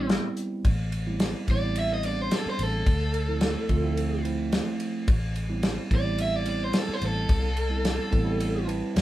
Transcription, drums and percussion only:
0.09 snare loud
0.09 closed hi-hat medium
0.37 closed hi-hat medium
0.65 kick loud
0.65 ride medium
0.92 ride medium
1.20 snare loud
1.20 ride medium
1.48 kick medium
1.48 ride medium
1.76 ride medium
2.03 ride medium
2.31 snare loud
2.31 ride loud
2.59 ride medium
2.86 kick loud
2.86 ride medium
3.14 ride medium
3.41 snare loud
3.41 ride medium
3.69 kick medium
3.69 ride medium
3.97 ride medium
4.25 ride medium
4.52 snare loud
4.52 ride medium
4.80 ride medium
5.08 kick loud
5.08 ride medium
5.36 ride medium
5.63 snare loud
5.63 ride medium
5.91 kick medium
5.91 ride medium
6.18 ride medium
6.46 ride medium
6.73 snare loud
6.73 ride loud
7.01 ride medium
7.29 kick loud
7.29 ride medium
7.57 ride medium
7.85 snare loud
7.85 ride loud
8.12 kick medium
8.12 ride medium
8.40 ride medium
8.69 ride medium
8.96 snare loud
8.96 ride medium

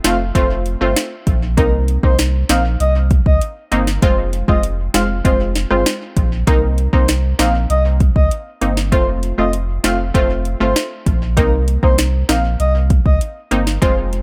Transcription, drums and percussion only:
0.04 snare loud
0.04 closed hi-hat medium
0.35 kick loud
0.35 closed hi-hat medium
0.66 closed hi-hat soft
0.96 snare loud
0.96 closed hi-hat medium
1.27 kick loud
1.27 closed hi-hat medium
1.58 kick loud
1.58 closed hi-hat medium
1.88 closed hi-hat medium
2.03 kick loud
2.19 snare loud
2.19 closed hi-hat medium
2.49 snare loud
2.49 closed hi-hat medium
2.80 closed hi-hat medium
3.11 kick loud
3.11 closed hi-hat medium
3.26 kick loud
3.41 closed hi-hat medium
3.72 closed hi-hat medium
3.87 snare medium
4.02 kick loud
4.02 closed hi-hat medium
4.33 closed hi-hat medium
4.48 kick loud
4.63 closed hi-hat medium
4.94 snare loud
4.94 closed hi-hat medium
5.25 kick loud
5.25 closed hi-hat medium
5.55 snare medium
5.55 closed hi-hat medium
5.71 cross-stick medium
5.86 snare loud
5.86 closed hi-hat medium
6.17 kick loud
6.17 closed hi-hat medium
6.47 kick loud
6.47 closed hi-hat medium
6.78 closed hi-hat medium
6.93 kick loud
7.08 snare loud
7.08 closed hi-hat medium
7.39 snare loud
7.39 closed hi-hat medium
7.70 closed hi-hat medium
8.00 kick medium
8.00 closed hi-hat soft
8.16 kick loud
8.31 closed hi-hat medium
8.62 closed hi-hat medium
8.77 snare medium
8.92 kick loud
8.92 closed hi-hat medium
9.23 closed hi-hat medium
9.53 closed hi-hat medium
9.84 snare loud
9.84 closed hi-hat medium
10.15 kick loud
10.15 closed hi-hat medium
10.45 closed hi-hat medium
10.76 snare loud
10.76 closed hi-hat medium
11.06 kick loud
11.06 closed hi-hat medium
11.37 kick loud
11.37 closed hi-hat medium
11.68 closed hi-hat medium
11.83 kick loud
11.98 snare loud
11.98 closed hi-hat medium
12.29 snare loud
12.29 closed hi-hat medium
12.60 closed hi-hat medium
12.90 kick loud
12.90 closed hi-hat medium
13.06 kick loud
13.21 closed hi-hat medium
13.51 closed hi-hat medium
13.67 snare medium
13.82 kick loud
13.82 closed hi-hat medium
14.13 closed hi-hat medium

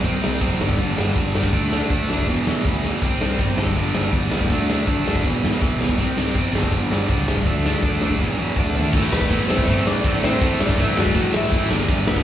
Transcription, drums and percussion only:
0.04 kick loud
0.04 open hi-hat medium
0.24 snare loud
0.41 kick loud
0.41 open hi-hat medium
0.61 snare loud
0.69 kick medium
0.78 kick medium
0.78 open hi-hat medium
0.98 snare loud
1.16 kick loud
1.16 open hi-hat medium
1.35 snare loud
1.44 kick medium
1.53 kick loud
1.53 open hi-hat medium
1.73 snare loud
1.90 kick loud
1.90 open hi-hat medium
2.10 snare loud
2.18 kick medium
2.28 kick medium
2.28 open hi-hat soft
2.47 snare loud
2.65 kick loud
2.65 open hi-hat medium
2.84 snare medium
3.02 kick loud
3.02 open hi-hat medium
3.21 snare loud
3.39 kick loud
3.39 open hi-hat medium
3.58 snare loud
3.67 kick medium
3.75 kick medium
3.75 open hi-hat medium
3.95 snare loud
4.12 kick loud
4.12 open hi-hat medium
4.31 snare loud
4.41 kick medium
4.50 kick loud
4.50 open hi-hat medium
4.70 snare loud
4.87 kick loud
4.87 open hi-hat medium
5.08 snare loud
5.15 kick medium
5.25 kick medium
5.25 open hi-hat soft
5.45 snare loud
5.62 kick loud
5.62 open hi-hat medium
5.81 snare loud
5.89 kick medium
5.98 kick loud
5.98 open hi-hat medium
6.17 snare loud
6.35 kick loud
6.35 open hi-hat medium
6.55 snare loud
6.63 kick medium
6.72 kick medium
6.72 open hi-hat medium
6.92 snare loud
7.09 kick loud
7.09 open hi-hat medium
7.28 snare loud
7.37 kick medium
7.46 kick medium
7.46 open hi-hat medium
7.66 snare loud
7.83 kick loud
7.83 open hi-hat soft
8.02 snare loud
8.10 kick medium
8.19 kick medium
8.19 snare medium
8.56 kick loud
8.56 mid tom medium
8.75 floor tom medium
8.93 kick loud
8.93 crash loud
8.93 crash medium
9.13 snare loud
9.21 kick medium
9.31 kick medium
9.31 crash medium
9.50 snare loud
9.58 kick medium
9.67 kick medium
9.67 crash medium
9.87 snare loud
10.04 kick loud
10.04 crash medium
10.24 snare loud
10.41 kick loud
10.41 crash medium
10.60 snare loud
10.69 kick loud
10.77 kick loud
10.77 crash medium
10.97 snare loud
11.06 kick medium
11.14 kick loud
11.14 crash medium
11.34 snare loud
11.51 kick loud
11.51 crash medium
11.71 snare loud
11.88 kick loud
11.88 crash medium
12.07 snare loud
12.16 kick medium

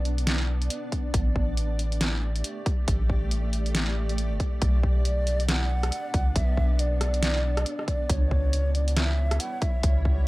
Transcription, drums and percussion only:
0.05 closed hi-hat medium
0.18 closed hi-hat medium
0.27 snare loud
0.27 closed hi-hat medium
0.62 closed hi-hat soft
0.70 closed hi-hat medium
0.92 kick medium
0.92 closed hi-hat soft
1.14 kick loud
1.14 closed hi-hat medium
1.36 kick medium
1.57 closed hi-hat medium
1.79 closed hi-hat soft
1.92 closed hi-hat soft
2.01 snare loud
2.01 closed hi-hat medium
2.36 closed hi-hat medium
2.44 closed hi-hat medium
2.66 kick loud
2.66 closed hi-hat soft
2.88 kick loud
2.88 closed hi-hat medium
3.10 kick medium
3.31 closed hi-hat medium
3.53 closed hi-hat soft
3.66 closed hi-hat soft
3.75 snare loud
3.75 closed hi-hat medium
4.09 closed hi-hat soft
4.18 closed hi-hat medium
4.40 kick medium
4.40 closed hi-hat soft
4.62 kick loud
4.62 closed hi-hat medium
4.83 kick medium
5.05 closed hi-hat medium
5.27 closed hi-hat soft
5.40 closed hi-hat soft
5.49 cross-stick medium
5.49 snare loud
5.49 closed hi-hat medium
5.83 cross-stick medium
5.83 closed hi-hat soft
5.92 closed hi-hat medium
6.14 kick loud
6.14 closed hi-hat soft
6.36 kick loud
6.36 closed hi-hat medium
6.57 kick medium
6.79 closed hi-hat medium
7.01 cross-stick medium
7.01 closed hi-hat medium
7.14 closed hi-hat medium
7.23 snare loud
7.23 closed hi-hat medium
7.57 cross-stick medium
7.57 closed hi-hat medium
7.66 closed hi-hat medium
7.79 cross-stick medium
7.88 kick medium
7.88 closed hi-hat medium
8.10 kick loud
8.10 closed hi-hat medium
8.31 kick medium
8.53 closed hi-hat medium
8.75 closed hi-hat medium
8.88 closed hi-hat medium
8.97 cross-stick medium
8.97 snare loud
8.97 closed hi-hat medium
9.31 cross-stick medium
9.31 closed hi-hat medium
9.40 closed hi-hat medium
9.62 kick loud
9.62 closed hi-hat medium
9.83 kick loud
9.83 closed hi-hat medium
10.05 kick medium

